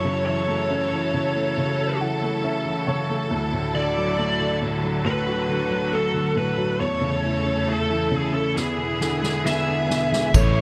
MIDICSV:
0, 0, Header, 1, 6, 480
1, 0, Start_track
1, 0, Tempo, 872093
1, 1821, Time_signature, 4, 2, 24, 8
1, 4224, Tempo, 891530
1, 5805, End_track
2, 0, Start_track
2, 0, Title_t, "Lead electric guitar"
2, 0, Program_c, 0, 29
2, 0, Note_on_c, 0, 73, 72
2, 137, Note_off_c, 0, 73, 0
2, 143, Note_on_c, 0, 73, 58
2, 1082, Note_off_c, 0, 73, 0
2, 2065, Note_on_c, 0, 74, 83
2, 2521, Note_off_c, 0, 74, 0
2, 2785, Note_on_c, 0, 71, 70
2, 3265, Note_on_c, 0, 69, 65
2, 3277, Note_off_c, 0, 71, 0
2, 3486, Note_off_c, 0, 69, 0
2, 3509, Note_on_c, 0, 71, 69
2, 3742, Note_off_c, 0, 71, 0
2, 3744, Note_on_c, 0, 73, 77
2, 4230, Note_on_c, 0, 69, 66
2, 4239, Note_off_c, 0, 73, 0
2, 4488, Note_off_c, 0, 69, 0
2, 4488, Note_on_c, 0, 68, 66
2, 4575, Note_off_c, 0, 68, 0
2, 4581, Note_on_c, 0, 69, 60
2, 4704, Note_off_c, 0, 69, 0
2, 4706, Note_on_c, 0, 68, 56
2, 5164, Note_off_c, 0, 68, 0
2, 5186, Note_on_c, 0, 76, 59
2, 5668, Note_off_c, 0, 76, 0
2, 5670, Note_on_c, 0, 73, 82
2, 5805, Note_off_c, 0, 73, 0
2, 5805, End_track
3, 0, Start_track
3, 0, Title_t, "String section"
3, 0, Program_c, 1, 48
3, 0, Note_on_c, 1, 49, 54
3, 0, Note_on_c, 1, 54, 54
3, 0, Note_on_c, 1, 64, 50
3, 0, Note_on_c, 1, 69, 63
3, 1801, Note_off_c, 1, 49, 0
3, 1801, Note_off_c, 1, 64, 0
3, 1802, Note_off_c, 1, 54, 0
3, 1824, Note_on_c, 1, 50, 66
3, 1825, Note_on_c, 1, 64, 60
3, 1827, Note_on_c, 1, 54, 60
3, 2773, Note_off_c, 1, 64, 0
3, 2780, Note_on_c, 1, 66, 57
3, 3720, Note_off_c, 1, 69, 0
3, 3724, Note_off_c, 1, 50, 0
3, 3725, Note_off_c, 1, 54, 0
3, 3731, Note_off_c, 1, 66, 0
3, 3741, Note_on_c, 1, 40, 63
3, 3741, Note_on_c, 1, 64, 56
3, 3741, Note_on_c, 1, 69, 66
3, 3742, Note_on_c, 1, 49, 55
3, 3742, Note_on_c, 1, 57, 55
3, 4690, Note_off_c, 1, 40, 0
3, 4690, Note_off_c, 1, 69, 0
3, 4691, Note_off_c, 1, 49, 0
3, 4691, Note_off_c, 1, 57, 0
3, 4698, Note_on_c, 1, 68, 63
3, 4699, Note_on_c, 1, 50, 56
3, 4700, Note_on_c, 1, 59, 51
3, 5645, Note_off_c, 1, 64, 0
3, 5653, Note_off_c, 1, 68, 0
3, 5654, Note_off_c, 1, 50, 0
3, 5654, Note_off_c, 1, 59, 0
3, 5664, Note_on_c, 1, 52, 68
3, 5664, Note_on_c, 1, 57, 70
3, 5665, Note_on_c, 1, 64, 81
3, 5666, Note_on_c, 1, 49, 79
3, 5805, Note_off_c, 1, 49, 0
3, 5805, Note_off_c, 1, 52, 0
3, 5805, Note_off_c, 1, 57, 0
3, 5805, Note_off_c, 1, 64, 0
3, 5805, End_track
4, 0, Start_track
4, 0, Title_t, "Grand piano"
4, 0, Program_c, 2, 0
4, 0, Note_on_c, 2, 42, 52
4, 8, Control_c, 2, 64, 127
4, 25, Note_on_c, 2, 49, 41
4, 143, Note_on_c, 2, 52, 45
4, 260, Note_on_c, 2, 57, 43
4, 386, Note_on_c, 2, 61, 49
4, 498, Note_off_c, 2, 52, 0
4, 506, Note_on_c, 2, 52, 42
4, 618, Note_off_c, 2, 49, 0
4, 626, Note_on_c, 2, 49, 43
4, 736, Note_off_c, 2, 57, 0
4, 744, Note_on_c, 2, 57, 44
4, 859, Note_off_c, 2, 49, 0
4, 867, Note_on_c, 2, 49, 52
4, 990, Note_on_c, 2, 69, 42
4, 1096, Note_off_c, 2, 52, 0
4, 1104, Note_on_c, 2, 52, 42
4, 1104, Note_on_c, 2, 78, 59
4, 1214, Note_off_c, 2, 57, 0
4, 1222, Note_on_c, 2, 57, 45
4, 1321, Note_off_c, 2, 61, 0
4, 1326, Note_off_c, 2, 78, 0
4, 1339, Note_on_c, 2, 76, 54
4, 1340, Note_on_c, 2, 61, 48
4, 1453, Note_off_c, 2, 52, 0
4, 1461, Note_on_c, 2, 52, 43
4, 1563, Note_off_c, 2, 76, 0
4, 1575, Note_off_c, 2, 49, 0
4, 1580, Note_on_c, 2, 73, 56
4, 1583, Note_on_c, 2, 49, 44
4, 1695, Note_off_c, 2, 57, 0
4, 1703, Note_on_c, 2, 57, 44
4, 1800, Note_off_c, 2, 42, 0
4, 1801, Note_off_c, 2, 69, 0
4, 1804, Note_off_c, 2, 73, 0
4, 1805, Note_off_c, 2, 61, 0
4, 1810, Note_off_c, 2, 52, 0
4, 1815, Note_off_c, 2, 49, 0
4, 1819, Note_off_c, 2, 57, 0
4, 1819, Note_on_c, 2, 38, 53
4, 1829, Control_c, 2, 64, 0
4, 1940, Control_c, 2, 64, 127
4, 1941, Note_on_c, 2, 45, 43
4, 2059, Note_on_c, 2, 50, 45
4, 2184, Note_on_c, 2, 54, 45
4, 2301, Note_on_c, 2, 57, 50
4, 2414, Note_off_c, 2, 50, 0
4, 2422, Note_on_c, 2, 50, 42
4, 2532, Note_off_c, 2, 45, 0
4, 2540, Note_on_c, 2, 45, 42
4, 2650, Note_off_c, 2, 54, 0
4, 2658, Note_on_c, 2, 54, 44
4, 2769, Note_off_c, 2, 45, 0
4, 2778, Note_on_c, 2, 45, 51
4, 2899, Note_on_c, 2, 66, 39
4, 3009, Note_off_c, 2, 50, 0
4, 3018, Note_on_c, 2, 50, 43
4, 3131, Note_off_c, 2, 54, 0
4, 3139, Note_on_c, 2, 54, 42
4, 3238, Note_off_c, 2, 57, 0
4, 3255, Note_on_c, 2, 57, 45
4, 3367, Note_off_c, 2, 50, 0
4, 3375, Note_on_c, 2, 50, 42
4, 3488, Note_off_c, 2, 45, 0
4, 3496, Note_on_c, 2, 45, 44
4, 3609, Note_off_c, 2, 54, 0
4, 3618, Note_on_c, 2, 54, 42
4, 3718, Note_off_c, 2, 38, 0
4, 3719, Note_off_c, 2, 66, 0
4, 3724, Note_off_c, 2, 57, 0
4, 3728, Note_off_c, 2, 50, 0
4, 3732, Note_off_c, 2, 45, 0
4, 3736, Note_off_c, 2, 54, 0
4, 3740, Note_on_c, 2, 40, 52
4, 3747, Control_c, 2, 64, 0
4, 3835, Control_c, 2, 64, 127
4, 3857, Note_on_c, 2, 49, 40
4, 3979, Note_on_c, 2, 52, 44
4, 4103, Note_on_c, 2, 61, 39
4, 4221, Note_on_c, 2, 64, 48
4, 4334, Note_off_c, 2, 52, 0
4, 4342, Note_on_c, 2, 52, 39
4, 4450, Note_off_c, 2, 49, 0
4, 4458, Note_on_c, 2, 49, 38
4, 4566, Note_off_c, 2, 61, 0
4, 4574, Note_on_c, 2, 61, 42
4, 4678, Note_off_c, 2, 40, 0
4, 4684, Note_off_c, 2, 64, 0
4, 4689, Note_off_c, 2, 52, 0
4, 4691, Note_off_c, 2, 49, 0
4, 4693, Note_off_c, 2, 61, 0
4, 4696, Note_on_c, 2, 40, 51
4, 4706, Control_c, 2, 64, 0
4, 4785, Control_c, 2, 64, 127
4, 4815, Note_on_c, 2, 47, 38
4, 4937, Note_on_c, 2, 50, 42
4, 5052, Note_on_c, 2, 56, 43
4, 5173, Note_on_c, 2, 59, 41
4, 5287, Note_off_c, 2, 50, 0
4, 5295, Note_on_c, 2, 50, 39
4, 5409, Note_off_c, 2, 47, 0
4, 5417, Note_on_c, 2, 47, 39
4, 5527, Note_off_c, 2, 56, 0
4, 5535, Note_on_c, 2, 56, 38
4, 5641, Note_off_c, 2, 40, 0
4, 5645, Note_off_c, 2, 59, 0
4, 5649, Note_off_c, 2, 50, 0
4, 5653, Note_off_c, 2, 47, 0
4, 5656, Note_off_c, 2, 56, 0
4, 5660, Note_on_c, 2, 57, 62
4, 5672, Control_c, 2, 64, 0
4, 5780, Control_c, 2, 64, 127
4, 5805, Note_off_c, 2, 57, 0
4, 5805, End_track
5, 0, Start_track
5, 0, Title_t, "Fingered electric bass"
5, 0, Program_c, 3, 33
5, 5662, Note_on_c, 3, 33, 97
5, 5805, Note_off_c, 3, 33, 0
5, 5805, End_track
6, 0, Start_track
6, 0, Title_t, "Drums"
6, 4701, Note_on_c, 9, 38, 43
6, 4755, Note_off_c, 9, 38, 0
6, 4941, Note_on_c, 9, 38, 51
6, 4995, Note_off_c, 9, 38, 0
6, 5062, Note_on_c, 9, 38, 48
6, 5116, Note_off_c, 9, 38, 0
6, 5181, Note_on_c, 9, 38, 67
6, 5235, Note_off_c, 9, 38, 0
6, 5422, Note_on_c, 9, 38, 65
6, 5476, Note_off_c, 9, 38, 0
6, 5544, Note_on_c, 9, 38, 64
6, 5598, Note_off_c, 9, 38, 0
6, 5660, Note_on_c, 9, 49, 92
6, 5661, Note_on_c, 9, 36, 104
6, 5662, Note_on_c, 9, 54, 41
6, 5714, Note_off_c, 9, 49, 0
6, 5715, Note_off_c, 9, 36, 0
6, 5715, Note_off_c, 9, 54, 0
6, 5805, End_track
0, 0, End_of_file